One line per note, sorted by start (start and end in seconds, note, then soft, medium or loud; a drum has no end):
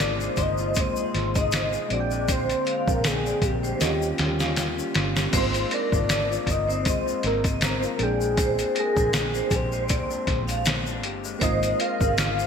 0.00 0.27 G#1 medium
0.00 1.87 C3 medium
0.00 0.75 G#3 medium
0.00 3.77 G#3 medium
0.00 1.86 A#3 medium
0.00 1.87 A#3 medium
0.00 1.87 C4 medium
0.00 1.87 D#4 medium
0.00 0.59 F4 medium
0.00 1.87 F4 medium
0.00 1.88 F4 medium
0.00 0.21 G#4 medium
0.00 0.43 D5 loud
0.00 snare loud
0.00 closed hi-hat medium
0.00 shaker medium
0.21 0.97 G#4 medium
0.21 0.37 C5 medium
0.21 shaker soft
0.37 0.85 G1 medium
0.37 1.99 C5 medium
0.37 kick medium
0.37 closed hi-hat medium
0.37 shaker soft
0.42 0.82 D#5 loud
0.58 1.14 F4 medium
0.58 0.75 C5 medium
0.58 shaker soft
0.75 1.99 G#3 medium
0.75 0.96 D#5 medium
0.75 kick medium
0.75 closed hi-hat medium
0.75 shaker medium
0.80 1.40 C5 loud
0.96 1.35 G#4 medium
0.96 shaker medium
1.14 1.75 G#1 loud
1.14 1.52 F4 medium
1.14 snare soft
1.14 closed hi-hat medium
1.34 1.72 G#4 medium
1.34 1.51 D#5 medium
1.34 1.86 D#5 loud
1.34 kick medium
1.34 closed hi-hat medium
1.34 shaker soft
1.52 2.48 F4 medium
1.52 1.72 C5 medium
1.52 snare loud
1.52 closed hi-hat loud
1.52 shaker medium
1.73 1.99 G#4 medium
1.73 shaker soft
1.86 2.26 A#2 medium
1.86 3.76 G#3 medium
1.86 1.94 D#5 medium
1.90 2.52 A#1 loud
1.90 3.79 D3 medium
1.90 3.79 C4 medium
1.90 3.77 C4 medium
1.90 3.78 D4 medium
1.90 1.99 F#4 medium
1.90 2.10 D5 medium
1.90 2.33 D5 loud
1.90 3.79 G5 medium
1.90 closed hi-hat medium
2.00 3.82 G5 medium
2.11 2.65 G#3 medium
2.11 shaker soft
2.28 3.89 A#2 medium
2.28 2.65 C5 medium
2.28 2.92 C5 loud
2.28 kick loud
2.28 closed hi-hat medium
2.28 shaker medium
2.49 2.86 D4 medium
2.49 closed hi-hat medium
2.49 shaker soft
2.65 3.03 G#3 medium
2.65 3.02 F5 medium
2.65 closed hi-hat medium
2.87 3.32 A#1 medium
2.87 3.24 D4 medium
2.87 3.08 A#4 medium
2.87 kick medium
2.87 shaker soft
3.04 3.61 G#3 medium
3.04 3.46 G#4 medium
3.04 snare loud
3.04 closed hi-hat medium
3.04 shaker medium
3.25 3.89 D4 medium
3.25 3.42 D5 medium
3.25 shaker soft
3.42 3.73 A#1 medium
3.42 3.89 G4 medium
3.42 4.96 G4 medium
3.42 kick medium
3.42 closed hi-hat medium
3.42 shaker soft
3.63 3.89 G#3 medium
3.63 3.80 C5 medium
3.63 shaker soft
3.79 4.11 D#2 loud
3.79 5.31 D#3 medium
3.79 5.32 D#3 medium
3.79 5.31 G3 medium
3.79 5.29 A#3 medium
3.79 5.31 C#4 medium
3.79 5.30 C#4 medium
3.79 5.31 F4 medium
3.79 4.00 D#5 medium
3.79 snare medium
3.79 closed hi-hat medium
3.79 shaker medium
3.84 3.90 F#4 medium
3.90 5.35 G4 medium
4.01 4.38 C#4 medium
4.01 shaker soft
4.18 4.80 D#2 loud
4.18 4.55 G3 medium
4.18 snare medium
4.18 closed hi-hat medium
4.39 4.75 C#4 medium
4.39 4.56 F5 medium
4.39 snare medium
4.39 shaker soft
4.56 5.14 G3 medium
4.56 snare medium
4.56 closed hi-hat medium
4.56 shaker medium
4.77 5.41 C#4 medium
4.77 shaker soft
4.94 5.26 G1 loud
4.94 5.54 F4 medium
4.94 snare loud
4.94 closed hi-hat medium
5.16 5.41 G3 medium
5.16 snare medium
5.16 shaker soft
5.31 5.64 G#1 loud
5.31 6.85 G#3 medium
5.31 7.94 A#3 medium
5.31 7.95 C4 medium
5.31 7.96 D#4 medium
5.31 5.70 C5 loud
5.31 kick loud
5.31 closed hi-hat medium
5.31 crash medium
5.31 shaker medium
5.36 7.97 F4 medium
5.36 5.75 C5 loud
5.54 5.92 F4 medium
5.54 closed hi-hat medium
5.54 shaker soft
5.71 6.09 C4 medium
5.71 6.07 A#4 medium
5.71 6.52 D5 loud
5.71 closed hi-hat medium
5.92 6.37 G#1 medium
5.92 6.30 F4 medium
5.92 kick medium
5.92 shaker soft
6.09 6.68 C4 medium
6.09 snare loud
6.09 closed hi-hat medium
6.09 shaker medium
6.30 7.06 F4 medium
6.30 6.46 C5 medium
6.30 shaker medium
6.47 6.94 G1 medium
6.47 8.23 A#4 medium
6.47 6.90 D#5 loud
6.47 kick medium
6.47 closed hi-hat medium
6.47 shaker soft
6.68 7.24 C4 medium
6.68 6.84 C5 medium
6.68 shaker soft
6.85 8.20 G#3 medium
6.85 7.25 C5 loud
6.85 7.05 D#5 medium
6.85 kick loud
6.85 closed hi-hat loud
6.85 shaker medium
7.06 7.43 F4 medium
7.06 shaker soft
7.23 7.84 G#1 loud
7.23 7.61 C4 medium
7.23 7.41 A#4 loud
7.23 snare soft
7.23 closed hi-hat medium
7.44 7.81 F4 medium
7.44 7.60 D#5 medium
7.44 kick medium
7.44 closed hi-hat soft
7.44 shaker medium
7.61 8.19 C4 medium
7.61 8.04 A#4 loud
7.61 7.81 C5 medium
7.61 snare loud
7.61 closed hi-hat medium
7.61 shaker medium
7.82 8.58 F4 medium
7.82 shaker soft
7.98 8.60 A#1 loud
7.98 8.35 A#2 medium
7.98 10.99 G#3 medium
7.98 10.99 C4 medium
7.98 11.00 D4 medium
7.98 8.19 D5 medium
7.98 closed hi-hat medium
8.03 8.77 G#4 loud
8.03 11.01 G5 medium
8.20 8.75 G#3 medium
8.20 shaker medium
8.37 9.88 A#2 medium
8.37 8.73 C5 medium
8.37 kick loud
8.37 closed hi-hat medium
8.37 shaker medium
8.58 8.95 D4 medium
8.58 closed hi-hat medium
8.58 shaker soft
8.75 9.13 G#3 medium
8.75 9.11 A#4 medium
8.75 closed hi-hat medium
8.79 9.56 G#4 medium
8.96 9.41 A#1 medium
8.96 9.33 D4 medium
8.96 kick medium
8.96 shaker medium
9.13 9.72 G#3 medium
9.13 snare loud
9.13 closed hi-hat medium
9.13 shaker medium
9.34 10.09 D4 medium
9.34 9.51 C5 medium
9.34 shaker medium
9.51 9.98 A#1 medium
9.51 11.04 G4 medium
9.51 11.05 C5 medium
9.51 kick medium
9.51 closed hi-hat medium
9.51 shaker medium
9.72 10.27 G#3 medium
9.72 9.89 C5 medium
9.72 shaker soft
9.89 11.50 A#2 medium
9.89 10.09 D5 medium
9.89 kick loud
9.89 closed hi-hat medium
9.89 shaker medium
10.11 10.47 D4 medium
10.11 shaker soft
10.27 11.03 A#1 loud
10.27 10.65 G#3 medium
10.27 kick loud
10.27 snare soft
10.27 closed hi-hat medium
10.47 10.86 D4 medium
10.47 10.64 F5 medium
10.47 closed hi-hat medium
10.47 shaker medium
10.65 11.25 G#3 medium
10.65 snare loud
10.65 closed hi-hat medium
10.65 shaker medium
10.87 11.50 D4 medium
10.87 shaker soft
11.03 11.34 G1 loud
11.03 11.50 G4 medium
11.03 closed hi-hat medium
11.24 11.43 G#3 medium
11.24 shaker medium
11.39 11.72 G#1 loud
11.39 12.47 G#3 medium
11.39 12.47 A#3 medium
11.39 12.47 C4 medium
11.39 12.47 D#4 medium
11.39 11.79 C5 loud
11.39 11.77 D#5 loud
11.39 kick loud
11.39 closed hi-hat medium
11.39 shaker medium
11.44 12.47 F4 medium
11.63 12.01 G#4 medium
11.63 closed hi-hat medium
11.63 shaker soft
11.79 12.17 F4 medium
11.79 12.16 A#4 medium
11.79 12.47 F5 loud
11.79 closed hi-hat medium
12.01 12.45 G#1 loud
12.01 12.38 G#4 medium
12.01 kick medium
12.01 shaker medium
12.18 12.47 F4 medium
12.18 snare loud
12.18 closed hi-hat medium
12.18 shaker medium
12.38 12.47 G#4 medium
12.38 12.47 C5 medium
12.38 shaker medium